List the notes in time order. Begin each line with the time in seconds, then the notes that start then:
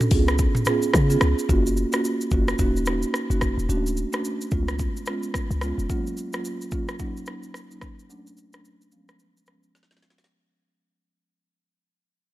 0.01 mid tom, shaker
0.11 C#2 B3 C#4 F4 G#4, kick, open hi-hat, shaker
0.28 cross-stick, shaker
0.39 kick, shaker
0.55 mid tom, shaker
0.65 B3 C#4 F4 G#4, cross-stick, mid tom, shaker
0.82 shaker
0.94 C#3, kick, cross-stick, shaker
1.10 B3 C#4 F4 G#4, shaker
1.21 C#2, cross-stick, shaker
1.39 shaker
1.49 F#1 A#3 C#4 F4 F#4, kick, shaker
1.67 shaker
1.77 shaker
1.92 A#3 C#4 F4 F#4, cross-stick, shaker
2.05 shaker
2.21 shaker
2.31 F#1 A#3 C#4 F4 F#4, kick, shaker
2.48 cross-stick, shaker
2.59 D#1 A#3 C#4 D#4 F#4, kick, shaker
2.76 shaker
2.86 A#3 C#4 D#4 F#4, cross-stick, shaker
3.02 shaker
3.14 cross-stick, shaker
3.30 F#1 A#3 C#4 D#4 F#4, shaker
3.41 kick, cross-stick, shaker
3.58 D#1, shaker
3.69 D1 A3 C#4 D4 F#4, shaker
3.87 shaker
3.97 shaker
4.12 A3 C#4 D4 F#4, cross-stick, shaker
4.25 shaker
4.41 shaker
4.51 C#2 G#3 B3 C#4 F4, kick, shaker
4.68 cross-stick, shaker
4.79 kick, shaker
4.97 shaker
5.06 G#3 B3 C#4 F4, cross-stick, shaker
5.23 shaker
5.34 kick, cross-stick, shaker
5.51 C#2, shaker
5.61 G#3 B3 C#4 F4, cross-stick, shaker
5.78 F1, shaker
5.89 F#3 A#3 C#4 F4, kick, shaker
6.07 shaker
6.17 shaker
6.33 F#3 A#3 C#4 F4, cross-stick, shaker
6.45 shaker
6.61 shaker
6.71 F#3 A#3 C#4 F4, kick, shaker
6.88 cross-stick, shaker
6.99 F#3 A#3 C#4 D#4, kick, shaker
7.17 shaker
7.26 F#3 A#3 C#4 D#4, cross-stick, shaker
7.43 shaker
7.54 cross-stick, shaker
7.70 F#3 A#3 C#4 D#4, shaker
7.81 kick, cross-stick, shaker
7.99 shaker
8.10 F#3 A3 C#4 D4, shaker
8.27 shaker
8.37 shaker
8.53 F#3 A3 C#4 D4, cross-stick, shaker
8.65 shaker
8.81 shaker
8.92 F3 G#3 B3 C#4, shaker
9.09 cross-stick, shaker
9.19 shaker
9.37 shaker
9.46 F3 G#3 B3 C#4, cross-stick, shaker
9.63 shaker
9.75 snare, shaker
9.83 snare
9.91 F3 G#3 B3 C#4, snare, shaker
9.97 snare
10.02 snare, shaker
10.10 snare
10.18 snare, shaker
10.24 snare